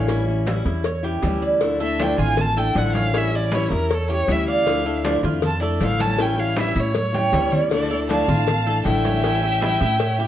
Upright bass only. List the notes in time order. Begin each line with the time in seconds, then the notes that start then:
Already playing: A1
0.65 E2
1.23 D2
2.18 A1
2.75 A1
3.70 E2
4.28 D2
5.23 F2
5.81 A1
6.76 A2
7.33 D2
8.28 A1
8.85 A1
9.81 A2